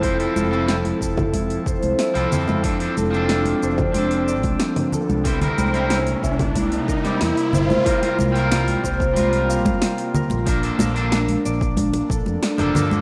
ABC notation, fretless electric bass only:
X:1
M:4/4
L:1/16
Q:1/4=92
K:Cmix
V:1 name="Fretless electric bass" clef=bass
F,,, z F,,,3 z F,,,3 z F,,, C,, z C,, F,,2- | F,, z F,,,3 z F,,,4- F,,, C,, z3 C,,- | C,, z C,,3 z C,,3 z3 E,, z G,,, z | z2 C,,3 z C,,4- C,, G,,, z3 B,,,- |
B,,, z B,,,3 z B,,,3 z B,,, F,, z F,,, G,,2 |]